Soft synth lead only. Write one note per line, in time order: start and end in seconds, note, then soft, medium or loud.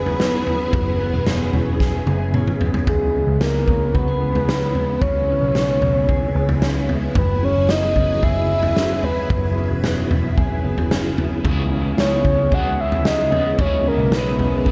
0.00 2.34 B4 loud
2.89 3.38 G#4 medium
3.42 3.96 A#4 medium
3.95 5.03 B4 loud
5.01 6.89 C#5 loud
7.18 7.46 B4 medium
7.44 7.72 C#5 loud
7.70 8.25 D#5 medium
8.24 9.05 E5 loud
9.04 10.11 B4 medium
12.00 12.55 C#5 medium
12.54 12.82 F#5 loud
12.80 13.08 E5 loud
13.06 13.59 D#5 loud
13.61 13.89 C#5 medium
13.88 14.17 A#4 medium
14.16 14.72 B4 medium